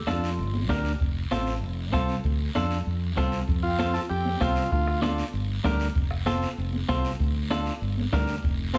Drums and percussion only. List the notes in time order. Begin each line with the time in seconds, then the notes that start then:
0.07 bombo rim, high conga, short guiro
0.24 short guiro
0.39 long guiro
0.54 high conga
0.69 bombo low, bombo rim, high conga, short guiro
0.85 short guiro
1.00 bombo low, long guiro
1.31 bombo rim, high conga, short guiro
1.47 short guiro
1.62 long guiro
1.93 bombo low, bombo rim, high conga, short guiro
2.09 short guiro
2.24 bombo low, long guiro
2.55 bombo rim, high conga, short guiro
2.71 short guiro
2.86 long guiro
3.17 bombo low, bombo rim, high conga, short guiro
3.32 short guiro
3.47 bombo low, long guiro
3.79 bombo rim, high conga, short guiro
3.94 short guiro
4.09 long guiro
4.25 high conga
4.41 bombo low, bombo rim, high conga, short guiro
4.56 short guiro
4.71 bombo low, long guiro
4.87 bombo rim
5.02 bombo rim, high conga, short guiro
5.18 short guiro
5.33 long guiro
5.64 bombo low, bombo rim, high conga, low conga, short guiro
5.80 short guiro
5.95 bombo low, long guiro
6.11 bombo rim
6.26 bombo rim, high conga, short guiro
6.42 short guiro
6.58 long guiro
6.73 high conga
6.89 bombo low, bombo rim, high conga, short guiro
7.05 short guiro
7.20 bombo low, long guiro
7.50 bombo rim, high conga, short guiro
7.66 short guiro
7.81 long guiro
7.97 high conga
8.12 bombo low, bombo rim, high conga, low conga, short guiro
8.27 short guiro
8.43 bombo low, long guiro
8.74 bombo rim, high conga, short guiro